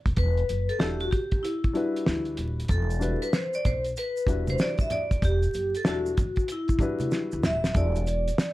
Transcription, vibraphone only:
0.18 0.71 B4 loud
0.69 0.81 A4 medium
0.80 0.99 G4 medium
1.01 1.06 F#4 medium
1.11 1.44 G4 medium
1.43 2.34 E4 medium
2.71 3.24 A4 medium
3.22 3.32 B4 medium
3.34 3.55 C5 medium
3.55 3.60 D5 medium
3.66 3.80 C5 medium
3.98 4.51 B4 medium
4.50 4.61 C5 medium
4.61 4.70 D5 medium
4.81 4.86 E5 loud
4.92 5.24 D5 loud
5.25 5.72 G4 medium
5.77 5.87 A4 medium
5.88 6.46 F#4 medium
6.52 7.41 E4 medium
7.46 7.77 E5 loud
7.77 8.53 D5 loud

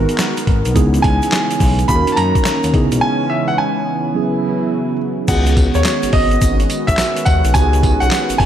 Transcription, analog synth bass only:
0.48 0.63 G#1 medium
0.66 0.74 B1 medium
0.76 0.99 C#2 loud
1.04 1.19 C#2 loud
1.61 1.84 B1 medium
1.89 2.04 D#2 loud
2.08 2.12 F#2 medium
2.17 2.33 F#2 medium
2.64 2.72 D#2 medium
2.74 2.89 C#2 loud
2.92 3.00 B1 loud
5.28 5.67 C#2 loud
5.75 5.83 D#2 loud
6.03 6.07 G#1 soft
6.13 6.37 G#1 medium
6.42 6.65 G#1 loud
6.88 6.97 B1 loud
7.27 7.42 D#2 medium
7.45 7.53 B1 medium
7.55 7.94 C#2 loud
8.02 8.10 B1 medium
8.30 8.34 G#1 soft
8.40 8.46 G#1 medium

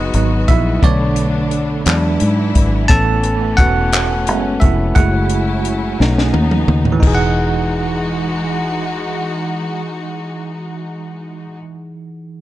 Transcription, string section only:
0.00 0.81 F#3 medium
0.00 0.81 G#3 medium
0.00 2.86 B3 medium
0.00 0.81 F#4 medium
0.82 1.84 D3 medium
0.82 1.85 A3 medium
0.82 1.85 D4 medium
1.85 2.88 D3 medium
1.85 4.93 E3 medium
1.85 2.88 E4 medium
2.90 4.94 A2 medium
2.90 4.94 B3 medium
2.90 4.94 C#4 medium
4.97 7.02 C#3 medium
4.97 5.99 F#3 medium
4.97 7.02 C#4 medium
4.97 5.99 E4 medium
6.00 7.02 B3 medium
6.00 7.02 D#4 medium
7.03 11.57 E3 medium
7.03 11.57 G#3 medium
7.03 11.57 D#4 medium
7.03 11.57 F#4 medium

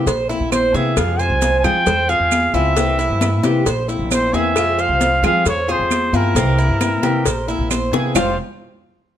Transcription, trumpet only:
0.54 0.77 C5 loud
0.76 0.99 E5 medium
0.97 1.21 F5 medium
1.20 1.59 G#5 loud
1.59 1.66 G#5 medium
1.64 2.11 G5 loud
2.09 2.56 F5 loud
2.54 3.44 E5 medium
4.13 4.36 C5 loud
4.35 4.82 E5 loud
4.80 5.24 F5 loud
5.26 5.46 F5 loud
5.48 5.73 C#5 loud
5.71 6.17 C5 loud
6.16 7.72 A#4 medium
8.17 8.37 C5 medium

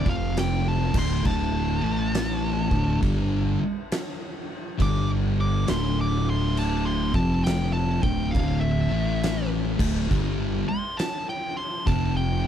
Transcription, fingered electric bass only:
0.06 0.91 F1 loud
0.94 1.24 D1 medium
1.26 1.79 D1 loud
1.83 2.67 A1 loud
2.71 3.01 D1 loud
3.03 3.56 G1 medium
4.80 5.64 G1 loud
5.69 7.10 D1 loud
7.15 7.98 F1 loud
8.04 8.32 D1 loud
8.35 8.87 D1 loud
8.91 9.75 A1 loud
9.80 10.08 D1 medium
10.11 10.63 G1 loud
11.87 12.47 F1 loud

